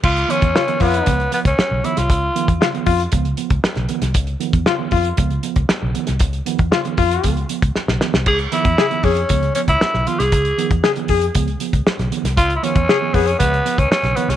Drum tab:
CC |x---------------|----------------|----------------|----------------|
HH |-xxx-xoxxxxx--xx|x-xx-xoxxxxx-xxx|xxxx--oxxxxx--xx|xxxx-xoxxxxx----|
SD |----o-------o--o|----o-------oo-o|----o-------o--o|----o-------oooo|
BD |o--o--o-o--o----|o--o--o-o--o----|o--o--o-o--o----|o--o--o-o--o----|

CC |x---------------|----------------|----------------|
HH |-xxx-xoxxxxx--xx|xxxx-xoxxxxx-xxx|xxxx--oxxxxx-xxx|
SD |----o-------oo-o|----o-------oo-o|----o-------oo-o|
BD |o--o--o-o--o----|o--o--o-o--o----|o--o--o-o--o----|